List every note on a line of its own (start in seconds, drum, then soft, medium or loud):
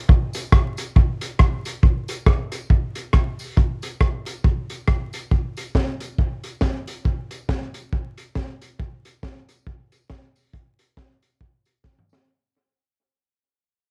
0.09 kick loud
0.33 closed hi-hat medium
0.33 tambourine medium
0.52 kick loud
0.52 cross-stick loud
0.77 closed hi-hat medium
0.77 tambourine medium
0.96 kick loud
1.21 closed hi-hat medium
1.21 tambourine medium
1.39 kick loud
1.39 cross-stick loud
1.65 closed hi-hat medium
1.65 tambourine medium
1.83 kick loud
2.08 closed hi-hat medium
2.08 tambourine medium
2.26 kick loud
2.26 cross-stick loud
2.52 closed hi-hat medium
2.52 tambourine medium
2.70 kick loud
2.95 closed hi-hat medium
2.95 tambourine medium
3.13 kick loud
3.13 cross-stick loud
3.39 open hi-hat medium
3.39 tambourine medium
3.57 kick loud
3.57 hi-hat pedal medium
3.82 closed hi-hat medium
3.82 tambourine medium
4.01 kick loud
4.01 cross-stick loud
4.26 closed hi-hat medium
4.26 tambourine medium
4.44 kick loud
4.70 closed hi-hat medium
4.70 tambourine medium
4.88 kick loud
4.88 cross-stick loud
5.13 closed hi-hat medium
5.13 tambourine medium
5.31 kick loud
5.57 closed hi-hat medium
5.57 tambourine medium
5.75 kick loud
5.75 snare loud
6.00 closed hi-hat medium
6.00 tambourine medium
6.18 kick loud
6.44 closed hi-hat medium
6.44 tambourine medium
6.61 kick loud
6.61 snare loud
6.87 closed hi-hat medium
6.87 tambourine medium
7.05 kick loud
7.31 closed hi-hat medium
7.31 tambourine medium
7.49 kick loud
7.49 snare loud
7.74 closed hi-hat medium
7.74 tambourine medium
7.93 kick loud
8.18 closed hi-hat medium
8.18 tambourine medium
8.35 kick loud
8.35 snare loud
8.62 closed hi-hat medium
8.62 tambourine medium
8.79 kick loud
9.05 closed hi-hat medium
9.05 tambourine medium
9.23 kick loud
9.23 snare loud
9.49 closed hi-hat medium
9.49 tambourine medium
9.67 kick loud
9.92 closed hi-hat medium
9.92 tambourine medium
10.10 kick loud
10.10 snare loud
10.36 open hi-hat medium
10.36 tambourine medium
10.53 kick loud
10.53 hi-hat pedal medium
10.79 closed hi-hat loud
10.79 tambourine medium
10.97 kick loud
10.97 snare loud
11.22 closed hi-hat medium
11.22 tambourine medium
11.41 kick loud
11.65 closed hi-hat medium
11.65 tambourine medium
11.84 kick loud
11.84 snare medium
11.99 mid tom medium
12.09 snare loud
12.09 tambourine medium